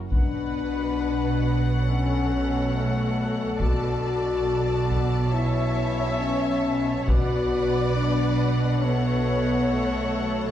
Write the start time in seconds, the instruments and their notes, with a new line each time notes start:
0.11 double bass section B1, cello section B2, woodwind section B3 F#4 B4 F#5, french horn section D4, violin section B4 F#5, viola section B4, taiko
1.86 woodwind section C#4 A4, french horn section C#4, viola section A4, violin section C#5
2.73 french horn section A3
3.58 double bass section B1, cello section B2, woodwind section D4 D5, french horn section F#4, violin section D5 A5, taiko
4.91 taiko
5.34 woodwind section C#4 A4 C#5 E5, french horn section E4, viola section C#5, violin section E5
6.20 french horn section C#4
7.07 double bass section B1, cello section B2, woodwind section D4 F#4 B4 D5, french horn section F#4, viola section B4, violin section D5 F#5, taiko
7.96 french horn section D4
8.80 woodwind section A3 A4 C#5, french horn section B3, viola section A4, violin section C#5
9.69 french horn section A3